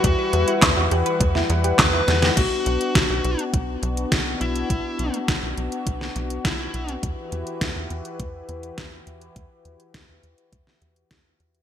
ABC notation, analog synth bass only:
X:1
M:4/4
L:1/16
Q:1/4=103
K:Bm
V:1 name="Analog synth bass" clef=bass
E,, z E,, z E,, E,, E,, z E,,2 E,,2 E,,2 E,,2 | B,,, z B,,, z B,,, B,,, B,,, z B,,,2 B,,,2 B,,,2 B,,,2 | B,,, z B,,, z B,,, B,,, B,,, z B,,,2 B,,,2 B,,,2 B,,,2 | E,, z E,, z E,, E,, E,, z E,,2 E,,2 E,,2 E,,2 |
E,, z E,, z E,, E,, E,, z E,, z E,,2 E,,2 E,,2 |]